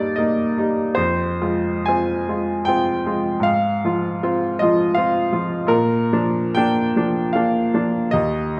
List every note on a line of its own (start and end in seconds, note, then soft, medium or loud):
0.00 0.90 G2 soft
0.00 0.58 G3 soft
0.00 0.18 A#3 soft
0.00 0.19 D#4 soft
0.00 0.17 D5 medium
0.00 0.16 D#5 medium
0.16 0.53 A#3 soft
0.16 0.54 D#4 soft
0.16 0.95 D#5 medium
0.58 0.93 G3 soft
0.58 0.93 D#4 soft
0.95 3.41 F2 soft
0.95 1.85 C5 medium
1.41 1.83 G#3 soft
1.41 1.83 F4 soft
1.86 2.25 C4 soft
1.86 2.25 F4 soft
1.86 2.66 G#5 medium
2.29 2.63 G#3 soft
2.29 2.64 F4 soft
2.65 3.02 C4 soft
2.65 3.02 F4 soft
2.65 3.44 G5 medium
3.06 3.41 G#3 soft
3.06 3.41 F4 soft
3.40 5.64 G#2 soft
3.40 4.60 F5 medium
3.85 4.20 F3 soft
3.85 4.20 F4 soft
4.23 4.57 C4 soft
4.23 4.58 F4 soft
4.59 4.94 F3 soft
4.59 4.94 F4 soft
4.59 4.97 D#5 medium
4.95 5.30 C4 soft
4.95 5.30 F4 soft
4.95 5.69 F5 medium
5.33 5.67 F3 soft
5.33 5.67 F4 soft
5.66 8.08 A#2 medium
5.66 6.55 A#4 medium
6.13 6.53 F3 soft
6.13 6.53 D4 soft
6.55 6.93 A#3 soft
6.55 6.93 D4 soft
6.55 7.35 G5 medium
6.96 7.32 F3 soft
6.96 7.32 D4 soft
7.33 7.71 A#3 soft
7.33 7.71 D4 soft
7.33 8.13 F5 medium
7.74 8.10 F3 soft
7.74 8.10 D4 soft
8.11 8.60 D#2 medium
8.11 8.60 D#5 medium